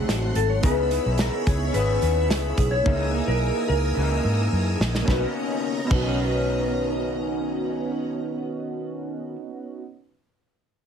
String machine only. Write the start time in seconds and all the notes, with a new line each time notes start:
Already playing: A3 F#5 C6
0.64 C#5 B5 E6
2.86 A#4 G#5 D#6 E6
5.06 C#4 D#5 A#5